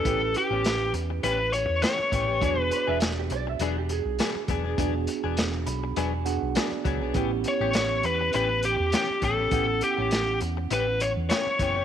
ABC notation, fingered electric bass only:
X:1
M:4/4
L:1/16
Q:"Swing 16ths" 1/4=101
K:A
V:1 name="Fingered electric bass" clef=bass
A,,,2 z A,,,3 E,,2 A,,,3 E,, z2 A,,,2 | E,,,2 z E,,,3 B,,,2 E,,,3 B,,, z2 E,,,2 | E,,,2 z E,,,3 B,,,2 E,,,3 B,,, z2 C,, B,,, | A,,,2 z A,,,3 E,,2 A,,,3 E,, z2 A,,,2 |
A,,,2 z A,,,3 E,,2 A,,,3 E,, z2 F,,,2 |]